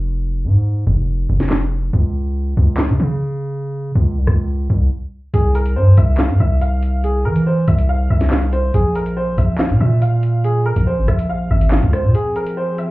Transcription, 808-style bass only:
0, 0, Header, 1, 2, 480
1, 0, Start_track
1, 0, Key_signature, -4, "minor"
1, 0, Tempo, 425532
1, 259, Time_signature, 4, 2, 24, 8
1, 14561, End_track
2, 0, Start_track
2, 0, Title_t, "808-style bass"
2, 0, Program_c, 0, 38
2, 0, Note_on_c, 0, 29, 106
2, 500, Note_on_c, 0, 44, 102
2, 517, Note_off_c, 0, 29, 0
2, 956, Note_off_c, 0, 44, 0
2, 980, Note_on_c, 0, 29, 108
2, 1441, Note_off_c, 0, 29, 0
2, 1460, Note_on_c, 0, 29, 103
2, 2151, Note_off_c, 0, 29, 0
2, 2180, Note_on_c, 0, 37, 106
2, 2871, Note_off_c, 0, 37, 0
2, 2900, Note_on_c, 0, 37, 109
2, 3260, Note_on_c, 0, 49, 97
2, 3277, Note_off_c, 0, 37, 0
2, 3374, Note_off_c, 0, 49, 0
2, 3380, Note_on_c, 0, 49, 101
2, 4417, Note_off_c, 0, 49, 0
2, 4460, Note_on_c, 0, 37, 107
2, 4700, Note_on_c, 0, 36, 103
2, 4717, Note_off_c, 0, 37, 0
2, 4814, Note_off_c, 0, 36, 0
2, 4820, Note_on_c, 0, 37, 108
2, 5281, Note_off_c, 0, 37, 0
2, 5300, Note_on_c, 0, 36, 102
2, 5530, Note_off_c, 0, 36, 0
2, 6020, Note_on_c, 0, 36, 102
2, 6500, Note_on_c, 0, 43, 94
2, 6517, Note_off_c, 0, 36, 0
2, 6728, Note_off_c, 0, 43, 0
2, 6740, Note_on_c, 0, 36, 108
2, 7100, Note_on_c, 0, 43, 98
2, 7117, Note_off_c, 0, 36, 0
2, 7214, Note_off_c, 0, 43, 0
2, 7220, Note_on_c, 0, 36, 105
2, 8180, Note_on_c, 0, 52, 99
2, 8197, Note_off_c, 0, 36, 0
2, 8636, Note_off_c, 0, 52, 0
2, 8660, Note_on_c, 0, 36, 106
2, 9121, Note_off_c, 0, 36, 0
2, 9140, Note_on_c, 0, 36, 100
2, 9831, Note_off_c, 0, 36, 0
2, 9860, Note_on_c, 0, 34, 109
2, 10551, Note_off_c, 0, 34, 0
2, 10580, Note_on_c, 0, 34, 112
2, 10940, Note_on_c, 0, 46, 102
2, 10957, Note_off_c, 0, 34, 0
2, 11054, Note_off_c, 0, 46, 0
2, 11060, Note_on_c, 0, 46, 103
2, 12097, Note_off_c, 0, 46, 0
2, 12140, Note_on_c, 0, 34, 108
2, 12380, Note_on_c, 0, 32, 101
2, 12397, Note_off_c, 0, 34, 0
2, 12494, Note_off_c, 0, 32, 0
2, 12500, Note_on_c, 0, 34, 104
2, 12961, Note_off_c, 0, 34, 0
2, 12980, Note_on_c, 0, 32, 106
2, 13325, Note_off_c, 0, 32, 0
2, 13340, Note_on_c, 0, 37, 104
2, 13580, Note_on_c, 0, 46, 100
2, 13597, Note_off_c, 0, 37, 0
2, 13694, Note_off_c, 0, 46, 0
2, 14561, End_track
0, 0, End_of_file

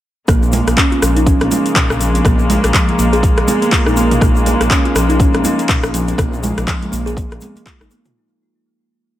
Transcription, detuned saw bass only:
0, 0, Header, 1, 2, 480
1, 0, Start_track
1, 0, Key_signature, -5, "minor"
1, 0, Tempo, 491803
1, 278, Time_signature, 4, 2, 24, 8
1, 8978, End_track
2, 0, Start_track
2, 0, Title_t, "Detuned saw bass"
2, 0, Program_c, 0, 39
2, 275, Note_on_c, 0, 34, 97
2, 594, Note_off_c, 0, 34, 0
2, 654, Note_on_c, 0, 34, 93
2, 729, Note_off_c, 0, 34, 0
2, 997, Note_on_c, 0, 34, 101
2, 1315, Note_off_c, 0, 34, 0
2, 1374, Note_on_c, 0, 34, 90
2, 1449, Note_off_c, 0, 34, 0
2, 1856, Note_on_c, 0, 34, 88
2, 2153, Note_off_c, 0, 34, 0
2, 2193, Note_on_c, 0, 34, 96
2, 2513, Note_off_c, 0, 34, 0
2, 2577, Note_on_c, 0, 34, 97
2, 2650, Note_off_c, 0, 34, 0
2, 2919, Note_on_c, 0, 34, 100
2, 3236, Note_off_c, 0, 34, 0
2, 3300, Note_on_c, 0, 34, 91
2, 3371, Note_off_c, 0, 34, 0
2, 3779, Note_on_c, 0, 34, 86
2, 4074, Note_off_c, 0, 34, 0
2, 4112, Note_on_c, 0, 34, 97
2, 4432, Note_off_c, 0, 34, 0
2, 4497, Note_on_c, 0, 34, 96
2, 4570, Note_off_c, 0, 34, 0
2, 4832, Note_on_c, 0, 34, 100
2, 5152, Note_off_c, 0, 34, 0
2, 5211, Note_on_c, 0, 34, 90
2, 5287, Note_off_c, 0, 34, 0
2, 5695, Note_on_c, 0, 34, 88
2, 5992, Note_off_c, 0, 34, 0
2, 6033, Note_on_c, 0, 34, 94
2, 6353, Note_off_c, 0, 34, 0
2, 6419, Note_on_c, 0, 34, 94
2, 6491, Note_off_c, 0, 34, 0
2, 6760, Note_on_c, 0, 34, 102
2, 7076, Note_off_c, 0, 34, 0
2, 7141, Note_on_c, 0, 34, 92
2, 7212, Note_off_c, 0, 34, 0
2, 7619, Note_on_c, 0, 32, 82
2, 7691, Note_off_c, 0, 32, 0
2, 8978, End_track
0, 0, End_of_file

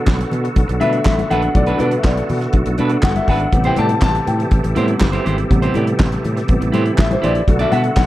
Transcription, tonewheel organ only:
0, 0, Header, 1, 2, 480
1, 0, Start_track
1, 0, Tempo, 493827
1, 1509, Time_signature, 4, 2, 24, 8
1, 7837, End_track
2, 0, Start_track
2, 0, Title_t, "Tonewheel organ"
2, 0, Program_c, 0, 16
2, 0, Note_on_c, 0, 50, 61
2, 0, Note_on_c, 0, 59, 65
2, 0, Note_on_c, 0, 66, 67
2, 0, Note_on_c, 0, 69, 75
2, 3391, Note_off_c, 0, 66, 0
2, 3392, Note_off_c, 0, 50, 0
2, 3392, Note_off_c, 0, 59, 0
2, 3427, Note_on_c, 0, 52, 73
2, 3428, Note_on_c, 0, 67, 59
2, 3432, Note_on_c, 0, 48, 58
2, 7227, Note_off_c, 0, 52, 0
2, 7228, Note_off_c, 0, 67, 0
2, 7229, Note_off_c, 0, 48, 0
2, 7230, Note_off_c, 0, 69, 0
2, 7268, Note_on_c, 0, 50, 73
2, 7270, Note_on_c, 0, 69, 80
2, 7274, Note_on_c, 0, 59, 62
2, 7274, Note_on_c, 0, 66, 62
2, 7837, Note_off_c, 0, 50, 0
2, 7837, Note_off_c, 0, 59, 0
2, 7837, Note_off_c, 0, 66, 0
2, 7837, Note_off_c, 0, 69, 0
2, 7837, End_track
0, 0, End_of_file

